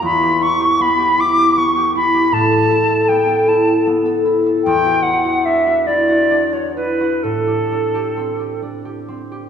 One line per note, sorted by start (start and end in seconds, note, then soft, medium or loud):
0.00 2.34 E2 medium
0.00 0.21 G4 soft
0.04 0.44 B5 medium
0.22 0.59 G4 soft
0.41 1.17 E4 soft
0.41 0.83 C#6 medium
0.60 0.97 G4 soft
0.80 1.56 B3 soft
0.80 1.21 B5 medium
0.98 1.36 G4 soft
1.18 1.94 E4 soft
1.18 1.59 D6 medium
1.37 1.75 G4 soft
1.57 3.08 B3 soft
1.57 1.94 C#6 medium
1.77 2.13 G4 soft
1.95 2.69 E4 soft
1.95 2.35 B5 medium
2.14 2.35 G4 soft
2.32 4.69 A2 medium
2.32 3.10 A5 medium
2.51 2.88 A4 soft
2.71 3.46 E4 soft
2.89 3.27 A4 soft
3.08 3.86 B3 soft
3.08 3.50 G5 medium
3.28 3.66 A4 soft
3.47 4.24 E4 soft
3.47 3.87 A5 medium
3.67 4.04 A4 soft
3.87 7.77 B3 soft
4.05 4.45 A4 soft
4.25 5.04 E4 soft
4.46 4.69 A4 soft
4.64 7.28 E2 soft
4.64 5.04 G5 medium
4.86 5.24 F#4 soft
5.02 5.87 E4 soft
5.02 5.47 F#5 medium
5.25 5.65 F#4 soft
5.45 6.30 D4 soft
5.45 5.88 E5 medium
5.67 6.07 F#4 soft
5.86 6.76 E4 soft
5.86 6.54 D5 medium
6.08 6.52 F#4 soft
6.31 7.70 D4 soft
6.53 7.00 F#4 soft
6.53 6.75 C#5 soft
6.76 9.49 E4 soft
6.76 7.24 B4 medium
7.01 7.28 F#4 soft
7.23 9.49 A2 soft
7.23 8.61 A4 medium
7.47 7.93 G4 soft
7.72 8.61 D4 soft
7.95 8.38 G4 soft
8.17 9.07 C4 soft
8.39 8.84 G4 soft
8.62 9.49 D4 soft
8.85 9.30 G4 soft
9.08 9.49 C4 soft
9.32 9.49 G4 soft